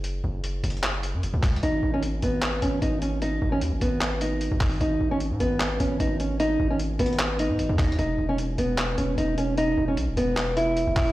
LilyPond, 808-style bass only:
\new Staff \with { instrumentName = "808-style bass" } { \clef bass \time 4/4 \key gis \minor \tempo 4 = 151 fis,,8 fis,,4 fis,,4~ fis,,16 fis,16 fis,,16 cis,8. | gis,,8 gis,,4 gis,,4 gis,,8 gis,,4~ | gis,,8 gis,,8 dis,16 gis,,16 gis,,4.~ gis,,16 gis,,8. | gis,,8 gis,,8. gis,16 gis,,4 gis,,8 gis,,4~ |
gis,,8 gis,,4 gis,,4~ gis,,16 gis,16 gis,,16 dis,8. | e,,8 e,,4 e,,4 e,,8 e,,4~ | e,,8 e,,8 b,,16 e,,16 e,,4.~ e,,16 e,,8. | }